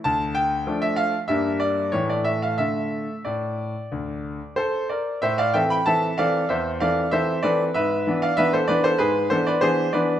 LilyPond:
<<
  \new Staff \with { instrumentName = "Grand piano" } { \time 4/4 \key d \minor \tempo 4 = 95 a''8 g''8. e''16 f''8 e''8 d''8 cis''16 d''16 e''16 f''16 | e''4 d''2 <a' c''>8 <bes' d''>8 | \key a \minor <c'' e''>16 <d'' f''>16 <e'' g''>16 <g'' b''>16 <e'' a''>8 <d'' f''>8 <c'' e''>8 <d'' f''>8 <c'' e''>8 <b' d''>8 | <b' e''>8. <d'' f''>16 <b' e''>16 <a' c''>16 <b' d''>16 <a' c''>16 <gis' b'>8 <a' c''>16 <b' d''>16 <gis' c''>8 <b' d''>8 | }
  \new Staff \with { instrumentName = "Grand piano" } { \time 4/4 \key d \minor d,4 <f a d'>4 <g, g bes d'>4 <a, e a a'>4 | <d a a'>4 a,4 d,4 r4 | \key a \minor a,8 <e c' a'>8 <e c' a'>8 <e c' a'>8 e,8 <e c' a'>8 <e c' a'>8 <e c' a'>8 | gis,8 <e b d'>8 <e b d'>8 <e b d'>8 gis,8 <e b d'>8 <e b d'>8 <e b d'>8 | }
>>